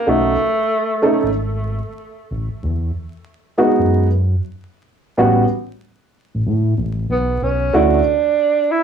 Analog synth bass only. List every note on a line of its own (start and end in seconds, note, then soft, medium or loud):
0.07 0.36 B1 loud
1.23 1.81 G#1 medium
2.31 2.49 A1 medium
2.63 2.91 E2 loud
3.79 4.36 F#2 medium
5.18 5.46 A1 loud
6.34 6.45 A1 medium
6.46 6.74 A2 loud
6.78 7.06 A1 loud
7.09 7.38 B1 loud
7.42 7.70 B1 medium
7.73 8.02 D2 loud